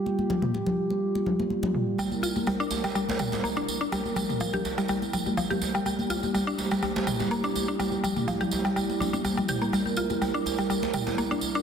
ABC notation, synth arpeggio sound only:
X:1
M:4/4
L:1/16
Q:"Swing 16ths" 1/4=124
K:Gdor
V:1 name="Synth arpeggio sound" clef=bass
z16 | G, z F z G, D z G, G, z G, z B, D z D | G, z G, z F, G z G, G, z G, z F, G z G, | G, z F z G, D z G, G, z G, z B, D z D |
G, z G, z F, G z G, G, z D D G, G, G B, | G, z F z G, D z G, G, z G, z B, D z D |]